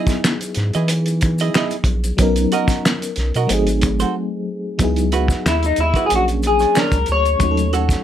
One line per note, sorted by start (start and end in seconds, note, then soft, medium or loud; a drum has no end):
0.00 2.14 F#3 medium
0.00 2.15 B3 medium
0.00 2.15 D#4 medium
0.00 0.21 E4 medium
0.00 2.16 E4 medium
0.00 0.22 G#4 medium
0.00 2.17 G#4 medium
0.00 0.22 D#5 medium
0.07 kick medium
0.07 snare soft
0.07 closed hi-hat soft
0.07 maracas medium
0.24 finger snap medium
0.24 snare medium
0.24 maracas medium
0.41 closed hi-hat soft
0.41 maracas soft
0.55 0.71 G#2 medium
0.55 snare soft
0.55 closed hi-hat medium
0.73 1.50 E3 medium
0.73 0.89 E4 soft
0.73 0.89 G#4 medium
0.73 0.88 D#5 medium
0.73 closed hi-hat soft
0.73 maracas soft
0.88 closed hi-hat medium
0.88 maracas medium
1.06 closed hi-hat soft
1.06 maracas soft
1.21 kick medium
1.21 closed hi-hat medium
1.21 maracas soft
1.38 1.54 E4 soft
1.38 1.54 G#4 medium
1.38 1.54 D#5 medium
1.38 closed hi-hat soft
1.38 maracas soft
1.54 1.76 E4 medium
1.54 1.76 G#4 medium
1.54 1.76 D#5 medium
1.54 finger snap medium
1.54 snare loud
1.54 maracas medium
1.71 closed hi-hat soft
1.71 maracas soft
1.84 2.13 A#1 loud
1.84 kick medium
1.84 closed hi-hat medium
2.04 closed hi-hat soft
2.04 maracas soft
2.17 2.46 B1 loud
2.17 3.45 F#3 medium
2.17 3.46 B3 medium
2.17 3.47 C#4 medium
2.17 kick loud
2.17 closed hi-hat medium
2.17 maracas medium
2.21 3.48 D#4 medium
2.21 3.48 A#4 medium
2.36 closed hi-hat medium
2.36 maracas soft
2.52 2.82 F#4 medium
2.52 2.82 A#4 medium
2.52 2.82 D#5 medium
2.52 closed hi-hat medium
2.52 maracas soft
2.68 kick medium
2.68 snare soft
2.68 closed hi-hat medium
2.68 maracas soft
2.85 finger snap medium
2.85 snare loud
2.85 maracas medium
3.02 closed hi-hat soft
3.02 maracas soft
3.16 3.32 B1 medium
3.16 snare soft
3.16 closed hi-hat medium
3.34 3.47 B2 medium
3.34 3.50 F#4 medium
3.34 3.50 A#4 soft
3.34 3.49 D#5 medium
3.34 closed hi-hat soft
3.34 maracas soft
3.47 4.04 G#1 loud
3.47 4.76 F#3 medium
3.47 4.77 A3 medium
3.47 4.77 C4 medium
3.47 closed hi-hat medium
3.47 maracas medium
3.52 4.78 D#4 medium
3.52 4.79 G#4 medium
3.67 closed hi-hat soft
3.67 maracas soft
3.81 kick medium
3.81 closed hi-hat medium
3.81 maracas soft
4.00 4.15 F#4 soft
4.00 4.14 A4 soft
4.00 4.14 C5 medium
4.00 closed hi-hat soft
4.00 maracas soft
4.78 5.35 C#2 medium
4.78 6.06 F#3 medium
4.78 6.07 B3 medium
4.78 6.08 D#4 medium
4.78 kick loud
4.78 closed hi-hat medium
4.78 maracas medium
4.82 6.09 E4 medium
4.82 6.09 G#4 medium
4.96 closed hi-hat soft
4.96 maracas soft
5.12 5.43 E4 medium
5.12 5.43 F#4 medium
5.12 5.43 B4 medium
5.12 closed hi-hat medium
5.12 maracas soft
5.28 kick medium
5.28 snare soft
5.28 closed hi-hat soft
5.28 maracas soft
5.46 5.73 D#2 medium
5.46 5.65 E4 medium
5.46 finger snap medium
5.46 snare loud
5.46 maracas medium
5.63 5.79 D#4 medium
5.63 closed hi-hat soft
5.63 maracas soft
5.76 5.93 D#2 medium
5.76 closed hi-hat medium
5.76 maracas soft
5.80 6.06 E4 medium
5.94 6.10 E4 soft
5.94 6.10 F#4 soft
5.94 6.10 B4 medium
5.94 kick medium
5.94 closed hi-hat soft
5.94 maracas soft
6.06 7.37 F#3 medium
6.06 6.11 G#4 medium
6.10 6.66 A#1 medium
6.10 7.38 A#3 soft
6.10 7.39 C#4 medium
6.10 7.39 D4 soft
6.10 closed hi-hat medium
6.10 maracas medium
6.15 6.23 F#4 medium
6.15 7.40 G#4 medium
6.28 closed hi-hat soft
6.28 maracas soft
6.43 closed hi-hat medium
6.43 maracas soft
6.47 6.78 G#4 medium
6.59 6.74 D4 soft
6.59 6.75 G#4 soft
6.59 6.75 C#5 soft
6.59 closed hi-hat soft
6.59 maracas soft
6.75 6.96 D4 medium
6.75 6.97 G#4 medium
6.75 6.97 C#5 medium
6.75 finger snap medium
6.75 snare loud
6.75 maracas medium
6.79 7.08 A#4 medium
6.92 7.05 C#2 medium
6.92 kick medium
6.92 closed hi-hat soft
6.92 maracas soft
7.06 7.36 D2 medium
7.06 closed hi-hat medium
7.06 maracas soft
7.12 7.71 C#5 medium
7.25 closed hi-hat soft
7.25 maracas soft
7.39 7.96 D#2 medium
7.39 8.04 F#3 medium
7.39 8.04 A3 soft
7.39 8.04 C#4 medium
7.39 kick loud
7.39 closed hi-hat medium
7.39 maracas medium
7.43 8.04 D#4 medium
7.43 7.50 F#4 soft
7.51 8.04 A4 medium
7.57 closed hi-hat soft
7.57 maracas soft
7.73 8.03 F#4 medium
7.73 8.03 A4 medium
7.73 8.04 C#5 medium
7.73 closed hi-hat medium
7.73 maracas soft
7.89 kick medium
7.89 snare soft
7.89 closed hi-hat soft
7.89 maracas medium